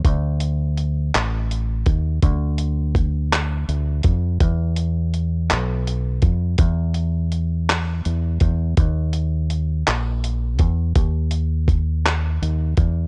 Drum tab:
HH |xxxxxx|xxxxxx|xxxxxx|xxxxxx|
CP |---x--|---x--|---x--|---x--|
BD |o----o|o-o--o|o----o|o----o|

HH |xxxxxx|xxxxxx|
CP |---x--|---x--|
BD |o----o|o-o--o|